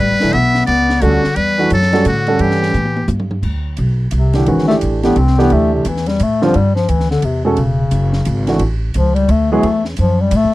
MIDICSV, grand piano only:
0, 0, Header, 1, 2, 480
1, 0, Start_track
1, 0, Tempo, 344828
1, 454, Time_signature, 3, 2, 24, 8
1, 14674, End_track
2, 0, Start_track
2, 0, Title_t, "Grand piano"
2, 0, Program_c, 0, 0
2, 293, Note_on_c, 0, 52, 61
2, 299, Note_on_c, 0, 62, 58
2, 300, Note_on_c, 0, 57, 51
2, 307, Note_on_c, 0, 64, 65
2, 443, Note_off_c, 0, 52, 0
2, 446, Note_off_c, 0, 62, 0
2, 447, Note_off_c, 0, 57, 0
2, 450, Note_off_c, 0, 64, 0
2, 1420, Note_on_c, 0, 55, 62
2, 1425, Note_on_c, 0, 66, 55
2, 1427, Note_on_c, 0, 61, 49
2, 1429, Note_on_c, 0, 69, 64
2, 1693, Note_off_c, 0, 55, 0
2, 1695, Note_off_c, 0, 66, 0
2, 1696, Note_off_c, 0, 61, 0
2, 1697, Note_off_c, 0, 69, 0
2, 2199, Note_on_c, 0, 52, 63
2, 2210, Note_on_c, 0, 57, 57
2, 2214, Note_on_c, 0, 66, 70
2, 2216, Note_on_c, 0, 62, 58
2, 2358, Note_off_c, 0, 52, 0
2, 2364, Note_off_c, 0, 57, 0
2, 2366, Note_off_c, 0, 66, 0
2, 2367, Note_off_c, 0, 62, 0
2, 2682, Note_on_c, 0, 55, 72
2, 2687, Note_on_c, 0, 61, 63
2, 2690, Note_on_c, 0, 66, 65
2, 2694, Note_on_c, 0, 69, 81
2, 2841, Note_off_c, 0, 55, 0
2, 2843, Note_off_c, 0, 61, 0
2, 2845, Note_off_c, 0, 66, 0
2, 2846, Note_off_c, 0, 69, 0
2, 3168, Note_on_c, 0, 55, 65
2, 3175, Note_on_c, 0, 61, 56
2, 3176, Note_on_c, 0, 78, 61
2, 3180, Note_on_c, 0, 69, 72
2, 3787, Note_off_c, 0, 55, 0
2, 3791, Note_off_c, 0, 61, 0
2, 3791, Note_off_c, 0, 78, 0
2, 3793, Note_off_c, 0, 69, 0
2, 6041, Note_on_c, 0, 52, 56
2, 6043, Note_on_c, 0, 57, 51
2, 6049, Note_on_c, 0, 62, 50
2, 6053, Note_on_c, 0, 67, 64
2, 6203, Note_off_c, 0, 52, 0
2, 6204, Note_off_c, 0, 57, 0
2, 6207, Note_off_c, 0, 62, 0
2, 6209, Note_off_c, 0, 67, 0
2, 6221, Note_on_c, 0, 56, 50
2, 6223, Note_on_c, 0, 51, 60
2, 6226, Note_on_c, 0, 61, 53
2, 6231, Note_on_c, 0, 66, 64
2, 6498, Note_off_c, 0, 56, 0
2, 6499, Note_off_c, 0, 51, 0
2, 6501, Note_off_c, 0, 61, 0
2, 6503, Note_off_c, 0, 66, 0
2, 6522, Note_on_c, 0, 52, 58
2, 6527, Note_on_c, 0, 57, 46
2, 6531, Note_on_c, 0, 67, 60
2, 6532, Note_on_c, 0, 62, 49
2, 6946, Note_off_c, 0, 52, 0
2, 6948, Note_off_c, 0, 57, 0
2, 6951, Note_off_c, 0, 62, 0
2, 6951, Note_off_c, 0, 67, 0
2, 7008, Note_on_c, 0, 52, 61
2, 7013, Note_on_c, 0, 62, 56
2, 7014, Note_on_c, 0, 57, 57
2, 7017, Note_on_c, 0, 67, 72
2, 7168, Note_off_c, 0, 52, 0
2, 7170, Note_off_c, 0, 57, 0
2, 7170, Note_off_c, 0, 62, 0
2, 7172, Note_off_c, 0, 67, 0
2, 7490, Note_on_c, 0, 57, 63
2, 7492, Note_on_c, 0, 52, 66
2, 7494, Note_on_c, 0, 62, 61
2, 7499, Note_on_c, 0, 67, 88
2, 8111, Note_off_c, 0, 57, 0
2, 8112, Note_off_c, 0, 52, 0
2, 8113, Note_off_c, 0, 62, 0
2, 8116, Note_off_c, 0, 67, 0
2, 8931, Note_on_c, 0, 50, 80
2, 8938, Note_on_c, 0, 55, 63
2, 8938, Note_on_c, 0, 60, 70
2, 8938, Note_on_c, 0, 65, 82
2, 9089, Note_off_c, 0, 50, 0
2, 9093, Note_off_c, 0, 55, 0
2, 9093, Note_off_c, 0, 60, 0
2, 9093, Note_off_c, 0, 65, 0
2, 10365, Note_on_c, 0, 56, 62
2, 10366, Note_on_c, 0, 61, 61
2, 10374, Note_on_c, 0, 66, 57
2, 10382, Note_on_c, 0, 69, 82
2, 10525, Note_off_c, 0, 56, 0
2, 10526, Note_off_c, 0, 61, 0
2, 10529, Note_off_c, 0, 66, 0
2, 10534, Note_off_c, 0, 69, 0
2, 11800, Note_on_c, 0, 52, 66
2, 11806, Note_on_c, 0, 57, 55
2, 11812, Note_on_c, 0, 62, 55
2, 11812, Note_on_c, 0, 66, 67
2, 11961, Note_off_c, 0, 52, 0
2, 11964, Note_off_c, 0, 57, 0
2, 11967, Note_off_c, 0, 62, 0
2, 11967, Note_off_c, 0, 66, 0
2, 13248, Note_on_c, 0, 54, 68
2, 13251, Note_on_c, 0, 59, 64
2, 13258, Note_on_c, 0, 64, 62
2, 13260, Note_on_c, 0, 68, 78
2, 13401, Note_off_c, 0, 54, 0
2, 13403, Note_off_c, 0, 59, 0
2, 13406, Note_off_c, 0, 64, 0
2, 13408, Note_off_c, 0, 68, 0
2, 14674, End_track
0, 0, End_of_file